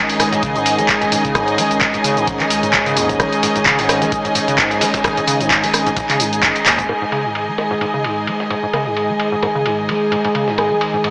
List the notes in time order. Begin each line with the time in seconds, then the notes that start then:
Already playing: G#1 D#3 G#3 C#4 D#4 G#4 D#5 G#5
0.09 open hi-hat, shaker
0.20 G#2, cross-stick, snare, open hi-hat, ride, shaker
0.32 G#2, snare, closed hi-hat, shaker
0.43 C#3, kick, closed hi-hat, ride, shaker
0.56 G#2, closed hi-hat, shaker
0.66 open hi-hat, ride, shaker
0.79 G#1 G#3, closed hi-hat, shaker
0.89 kick, snare, clap, closed hi-hat, ride, shaker
1.02 B1 G#2, snare, closed hi-hat, shaker
1.12 G#2, open hi-hat, ride, shaker
1.25 G#1 C#3, kick, closed hi-hat, shaker
1.35 G#1 G#2, kick, cross-stick, closed hi-hat, ride, shaker
1.48 closed hi-hat, shaker
1.58 G#3, open hi-hat, ride, shaker
1.71 G#1, closed hi-hat, shaker
1.81 G#2, kick, snare, clap, closed hi-hat, ride, shaker
1.94 G#2, closed hi-hat, shaker
2.04 C#3, open hi-hat, ride, shaker
2.17 G#2, closed hi-hat, shaker
2.27 G#1, kick, closed hi-hat, ride, shaker
2.40 G#3, clap, closed hi-hat, shaker
2.50 C#2, open hi-hat, ride, shaker
2.63 G#2, closed hi-hat, shaker
2.73 G#2, kick, snare, clap, closed hi-hat, ride, shaker
2.86 C#3, closed hi-hat, ride, shaker
2.97 D#2 G#2, open hi-hat, ride, shaker
3.09 kick, snare, closed hi-hat, shaker
3.20 G#1 G#3, kick, cross-stick, closed hi-hat, ride, shaker
3.33 closed hi-hat, shaker
3.43 G#2, open hi-hat, ride, shaker
3.56 G#1 G#2, closed hi-hat, shaker
3.66 C#3, kick, snare, clap, closed hi-hat, ride, shaker
3.79 G#2, open hi-hat, shaker
3.89 cross-stick, snare, open hi-hat, ride, shaker
4.02 G#3, snare, closed hi-hat, shaker
4.12 kick, closed hi-hat, ride, shaker
4.25 G#2, closed hi-hat, shaker
4.35 G#2, open hi-hat, ride, shaker
4.48 G#1 C#3, closed hi-hat, shaker
4.58 G#2, kick, snare, clap, closed hi-hat, ride, shaker
4.71 B1, snare, closed hi-hat, shaker
4.81 G#3, snare, open hi-hat, ride, shaker
4.94 G#1, kick, snare, closed hi-hat, ride, shaker
5.04 G#1 G#2, kick, cross-stick, snare, closed hi-hat, ride, shaker
5.17 G#2, closed hi-hat, shaker
5.27 C#3, open hi-hat, ride, shaker
5.40 G#1 G#2, closed hi-hat, shaker
5.50 kick, snare, clap, closed hi-hat, ride, shaker
5.63 G#3, open hi-hat, shaker
5.74 cross-stick, open hi-hat, ride, shaker
5.86 G#2, closed hi-hat, shaker
5.97 G#2, kick, closed hi-hat, ride, shaker
6.10 C#3, clap, open hi-hat, shaker
6.20 G#2, open hi-hat, shaker
6.32 D#1, closed hi-hat, shaker
6.43 G#2 G#3, kick, snare, clap, closed hi-hat, ride, shaker
6.55 closed hi-hat, ride, shaker
6.66 D#2 G#2, snare, clap, open hi-hat, ride, shaker
6.79 G#2, kick, snare, closed hi-hat, shaker
6.89 G#2 D#3 G#3 G#4, cross-stick, ride
7.02 G#2
7.12 C#3, ride
7.25 G#2
7.35 ride
7.48 G#3
7.58 cross-stick, snare, ride
7.71 G#2, snare
7.81 G#2, ride
7.94 C#3
8.04 G#2, closed hi-hat, ride
8.27 G#3, ride
8.40 snare
8.50 G#2, ride
8.63 G#2
8.73 C#3, cross-stick, ride
8.86 G#2
8.97 closed hi-hat, ride
9.09 G#3
9.20 ride
9.32 G#2
9.43 G#2, cross-stick, ride
9.55 C#3
9.66 G#2, ride
9.89 G#3, closed hi-hat, ride, shaker
10.02 closed hi-hat
10.12 G#2, ride
10.25 G#2, ride
10.35 C#3, ride
10.48 G#2, snare
10.58 cross-stick, ride
10.71 G#3
10.81 closed hi-hat, ride
10.94 G#2
11.04 G#2, ride